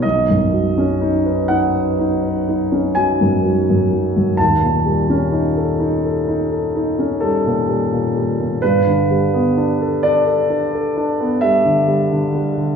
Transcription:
<<
  \new Staff \with { instrumentName = "Grand piano" } { \time 9/8 \key dis \phrygian \tempo 4. = 42 dis''4. fis''4. gis''4. | a''2~ a''8 r8 a'4. | b'4. d''4. e''4. | }
  \new Staff \with { instrumentName = "Grand piano" } { \time 9/8 \key dis \phrygian b,,16 fis,16 fis16 cis'16 dis'16 b'16 dis'16 b'16 dis'16 b'16 dis'16 cis'16 fis16 fis,16 fis16 fis,16 fis16 fis,16 | dis,16 ais,16 g16 cis'16 dis'16 a'16 dis'16 a'16 dis'16 a'16 dis'16 cis'16 g16 ais,16 g16 ais,16 g16 ais,16 | g,16 d16 g16 b16 d'16 a'16 d'16 a'16 d'16 a'16 d'16 b16 g16 d16 g16 d16 g16 d16 | }
>>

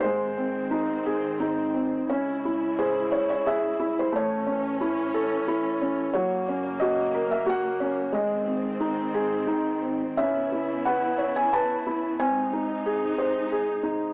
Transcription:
<<
  \new Staff \with { instrumentName = "Felt piano" } { \time 3/4 \key cis \minor \tempo 4 = 89 << { bis'2 r4 | cis''4 bis'8. cis''16 e''8. bis'16 | cis''2 r4 | cis''4 dis''8. e''16 fis''4 |
dis''4. r4. | e''4 fis''8. gis''16 a''4 | gis''4. r4. | } \\ { gis8 bis8 dis'8 gis'8 dis'8 bis8 | cis'8 e'8 gis'8 cis''8 gis'8 e'8 | a8 cis'8 e'8 a'8 e'8 cis'8 | fis8 cis'8 fis'8 ais'8 fis'8 cis'8 |
gis8 bis8 dis'8 gis'8 dis'8 bis8 | cis'8 e'8 b'8 cis''8 b'8 e'8 | bis8 dis'8 gis'8 bis'8 gis'8 dis'8 | } >> }
  \new Staff \with { instrumentName = "String section" } { \clef bass \time 3/4 \key cis \minor <gis, dis bis>2. | <cis gis e'>2. | <a, e cis'>2. | <fis, cis ais>2. |
<gis, dis bis>2. | <cis b e'>2. | <bis, gis dis'>2. | }
>>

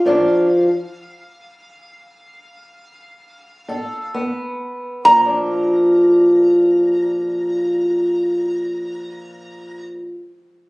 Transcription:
<<
  \new Staff \with { instrumentName = "Resonator guitar played with a steel bar" } { \time 12/8 \key bes \major \tempo 4. = 42 f''1~ f''4 r4 | bes''1. | }
  \new Staff \with { instrumentName = "Steel-string acoustic guitar" } { \time 12/8 \key bes \major << { <f d' f'>4 r2. r8 a'8 b4 | <f d' f'>1. | } \\ { bes,4 r2. r8 b,4 r8 | bes,1. | } >> }
>>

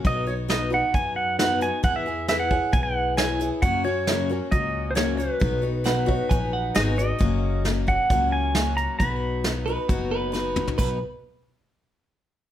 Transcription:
<<
  \new Staff \with { instrumentName = "Pedal steel guitar" } { \time 4/4 \key b \major \tempo 4 = 134 dis''8 cis''8 dis''8 fis''8 gis''8 fis''8 fis''8 gis''8 | fis''16 e''8. e''16 fis''8. gis''16 fis''8. gis''8. r16 | fis''8 cis''4. dis''8.~ dis''32 c''32 cis''8 b'8~ | b'2. dis''8 dis''8~ |
dis''4. fis''4 gis''4 ais''8 | b''2. r4 | r1 | }
  \new Staff \with { instrumentName = "Clean electric guitar" } { \time 4/4 \key b \major r1 | r1 | r1 | r4 fis''4 gis''8 fis''8 dis''8. r16 |
r1 | r4. b'8 fis'8 b'8 b'8. r16 | b'8 r2. r8 | }
  \new Staff \with { instrumentName = "Honky-tonk piano" } { \time 4/4 \key b \major r4 <dis' fis' b'>8 <dis' fis' b'>8 r4 <dis' fis' b'>8 r8 | r4 <e' gis' b'>8 <e' gis' cis''>8 r4 <e' gis' cis''>8 r8 | r4 <cis' fis' ais'>8 <cis' fis' ais'>8 r4 <cis' fis' ais'>8 r8 | r4 <dis' fis' b'>8 <dis' fis' cis''>8 r4 <dis' fis' gis'>8 r8 |
r1 | r1 | r1 | }
  \new Staff \with { instrumentName = "Steel-string acoustic guitar" } { \time 4/4 \key b \major <b, fis b dis' fis'>8 <b dis' fis'>8 <b, fis b dis' fis'>8 <b dis' fis'>8 <fis b dis' fis'>4 <b, fis b dis' fis'>8 <b dis' fis'>8 | <e b e' gis'>8 <b e' gis'>8 <e b e' gis'>8 <b e' gis'>8 <e b e' gis'>4 <e b e' gis'>8 <b e' gis'>8 | <fis, cis fis ais cis' fis'>8 <fis ais cis' fis'>8 <fis, cis fis ais cis' fis'>8 <fis ais cis' fis'>8 <fis ais cis' fis'>4 <fis, cis fis ais cis' fis'>8 <fis ais cis' fis'>8 | <b, fis b dis' fis'>8 <b dis' fis'>8 <b, fis b dis' fis'>8 <b dis' fis'>8 <fis b dis' fis'>4 <b, fis b dis' fis'>8 <b dis' fis'>8 |
<fis, cis fis ais cis' fis'>4 <fis ais cis' fis'>8 <fis ais cis' fis'>8 <fis, cis fis ais cis' fis'>4 <fis ais cis' fis'>4 | <b, fis b dis' fis'>4 <fis b dis' fis'>8 <b dis' fis'>8 <b, fis b dis' fis'>4 <fis b dis' fis'>4 | <b, fis b dis' fis'>8 r2. r8 | }
  \new Staff \with { instrumentName = "Upright bass" } { \clef bass \time 4/4 \key b \major b,,2 fis,2 | e,2 b,,2 | fis,2 cis,2 | b,,2 ais,,4 gis,,4 |
fis,,2 cis,2 | b,,2 fis,,2 | b,,8 r2. r8 | }
  \new DrumStaff \with { instrumentName = "Drums" } \drummode { \time 4/4 <hh bd>4 <hh sn>4 <hh bd>4 <hh sn>8 hh8 | <hh bd>4 <hh sn>8 bd8 <hh bd>4 <hh sn>8 hh8 | <hh bd>4 <hh sn>4 <hh bd>4 <hh sn>8 hh8 | <hh bd>4 <hh sn>8 bd8 <hh bd>4 <hh sn>8 hh8 |
<hh bd>4 <hh sn>8 bd8 <hh bd>4 <hh sn>8 hh8 | <hh bd>4 <hh sn>4 <hh bd>4 sn8 toml16 tomfh16 | <cymc bd>4 r4 r4 r4 | }
>>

